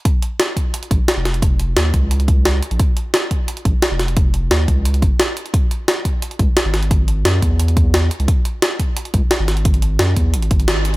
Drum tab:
HH |x-x-x-x-xxx-x-xx|x-x-x-x-xxx-x-xx|x-x-x-x-xxx-x-xx|x-x-x-x-xxx-x-xx|
SD |----o-------o-o-|----o-------o---|----o-------o-o-|----o-------o---|
BD |o-----o---o-----|o-----o---o-----|o-----o---o-----|o-----o---o-----|

HH |x-x-x-x-xxx-x-xx|x-x-x-x-xxx-x-xx|x-x-x-x-xxx-x-xx|xxx-x-x-xxxxx-x-|
SD |----o-------o-o-|----o-------o---|----o-------o-o-|----o-------o---|
BD |o-----o---o-----|o-----o---o-----|o-----o---o-----|o-----o---o-----|